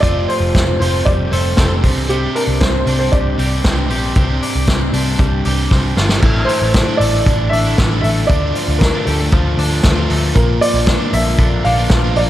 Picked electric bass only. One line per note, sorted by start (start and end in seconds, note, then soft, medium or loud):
0.03 0.24 F1 loud
0.40 0.51 F1 medium
0.55 0.76 F1 medium
0.80 1.01 F1 loud
1.06 1.27 F1 loud
1.32 1.53 F1 medium
1.58 1.85 F1 medium
1.84 2.26 C2 medium
2.47 2.58 C2 medium
2.61 2.82 C2 medium
2.86 3.08 C2 medium
3.13 3.34 C2 medium
3.38 3.60 C2 medium
3.65 3.90 C2 medium
3.90 4.11 A#1 medium
4.16 4.38 C2 medium
4.55 4.66 C2 medium
4.68 4.89 C2 medium
4.93 5.14 C2 medium
5.19 5.40 C2 medium
5.46 5.67 C2 medium
5.71 5.93 C2 medium
5.97 6.18 G1 medium
6.22 6.44 A1 loud
6.62 6.83 A1 loud
7.00 7.22 A1 medium
7.26 7.48 A1 loud
7.52 7.73 A1 medium
7.78 7.99 A1 medium
8.03 8.25 A1 medium
8.30 8.51 D2 loud
8.68 8.89 D2 medium
9.07 9.28 D2 medium
9.33 9.54 D2 medium
9.58 9.79 D2 medium
9.85 10.06 D2 loud
10.10 10.31 D2 medium
10.36 10.57 A#1 loud
10.74 10.95 A#1 loud
11.13 11.34 A#1 medium
11.38 11.60 A#1 loud
11.65 11.86 A#1 medium
11.90 12.12 A#1 medium
12.16 12.30 A#1 loud